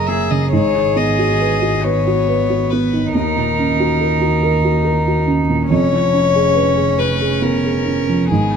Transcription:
0.00 0.53 F#1 medium
0.00 0.48 F#2 medium
0.00 0.30 C#3 soft
0.00 0.08 A#3 soft
0.00 0.55 G#4 soft
0.00 0.54 C#5 soft
0.07 0.43 A#3 soft
0.07 0.50 G#4 soft
0.07 0.32 E5 medium
0.30 0.52 C#3 soft
0.30 0.51 D#5 medium
0.51 3.15 G#1 medium
0.51 3.10 G#2 medium
0.51 1.85 G#4 medium
0.51 0.99 C#5 medium
0.75 1.10 D#3 soft
0.96 1.31 B3 soft
0.96 1.85 D#5 medium
1.19 1.54 F#4 soft
1.40 1.75 B4 soft
1.62 1.97 F#4 soft
1.83 3.11 B3 medium
1.83 2.19 B4 soft
1.83 2.72 C#5 medium
2.07 2.41 F#4 soft
2.28 2.62 B4 soft
2.50 2.84 F#4 soft
2.70 3.06 B3 soft
2.70 3.13 B4 medium
2.93 3.14 D#3 soft
3.12 5.73 D#2 medium
3.12 5.67 D#2 medium
3.12 5.66 D#4 medium
3.12 5.24 A#4 medium
3.36 3.70 A#2 soft
3.59 3.92 C#4 soft
3.80 4.13 F#4 soft
4.01 4.35 A#4 soft
4.21 4.55 F#4 soft
4.43 4.77 A#4 soft
4.65 4.99 F#4 soft
4.85 5.19 A#4 soft
5.08 5.41 F#4 soft
5.27 5.62 C#4 soft
5.50 5.71 A#2 soft
5.70 8.33 F1 medium
5.70 8.26 F2 medium
5.70 8.26 C#4 medium
5.70 7.00 C#5 medium
5.93 6.26 F3 soft
6.14 6.47 C#4 soft
6.34 6.68 G#4 medium
6.55 6.89 B4 soft
6.76 7.11 G#4 medium
6.98 7.33 B4 soft
6.98 7.44 B4 medium
7.20 7.55 G#4 soft
7.42 7.77 B3 soft
7.42 8.30 A#4 medium
7.64 7.99 G#4 soft
7.86 8.21 C#4 soft
8.09 8.31 F3 soft
8.31 8.57 G#1 medium
8.31 8.57 G#2 medium
8.31 8.57 B3 soft
8.31 8.57 G#4 medium

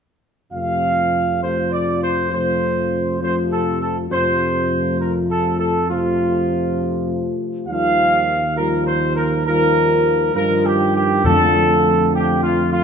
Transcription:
0.52 4.07 F2 medium
0.52 1.38 C3 medium
0.52 1.38 F3 medium
0.52 1.38 A3 soft
0.52 1.38 F4 medium
0.52 1.37 F5 medium
1.41 2.28 C3 soft
1.41 2.28 F3 soft
1.41 2.28 A3 medium
1.41 2.28 F4 medium
1.41 1.69 C5 medium
1.72 1.99 D5 medium
2.02 2.30 C5 medium
2.31 3.19 C3 medium
2.31 3.19 F3 soft
2.31 3.18 A3 medium
2.31 3.18 F4 medium
2.31 3.18 C5 medium
3.21 4.08 C3 medium
3.21 4.08 F3 medium
3.21 4.07 A3 medium
3.21 4.07 F4 medium
3.21 3.35 C5 medium
3.51 3.79 A4 medium
3.81 3.94 A4 medium
4.10 7.35 F2 medium
4.10 5.86 C3 medium
4.10 5.86 F3 medium
4.10 5.85 A3 medium
4.10 5.85 F4 medium
4.10 4.96 C5 medium
4.99 5.13 A#4 medium
5.29 5.57 A4 medium
5.59 5.87 A4 medium
5.89 7.63 C3 medium
5.89 7.63 F3 medium
5.89 7.63 A3 medium
5.89 7.63 F4 medium
5.89 7.18 F4 medium
7.66 10.31 D#2 medium
7.66 8.41 D#3 medium
7.66 8.41 F3 medium
7.66 8.39 G3 medium
7.66 8.39 F4 medium
7.66 8.52 F5 loud
8.56 9.43 D#3 medium
8.56 9.43 F3 medium
8.56 9.42 G3 medium
8.56 9.42 F4 medium
8.56 8.84 A#4 medium
8.85 9.14 C5 medium
9.16 9.44 A#4 medium
9.45 10.32 D#3 medium
9.45 10.31 F3 medium
9.45 10.31 G3 medium
9.45 10.31 F4 medium
9.45 10.31 A#4 medium
10.35 11.26 G2 medium
10.35 11.21 D#3 medium
10.35 11.21 F3 medium
10.35 11.20 G3 medium
10.35 11.20 F4 medium
10.35 10.62 A#4 medium
10.65 10.94 G4 medium
10.95 11.22 G4 medium
11.24 12.53 F2 medium
11.24 12.84 F2 medium
11.24 12.84 D3 medium
11.24 12.84 F3 medium
11.24 12.84 A3 medium
11.24 12.84 F4 medium
11.24 12.09 A4 loud
12.14 12.41 G4 medium
12.42 12.69 F4 medium
12.72 12.84 F4 medium

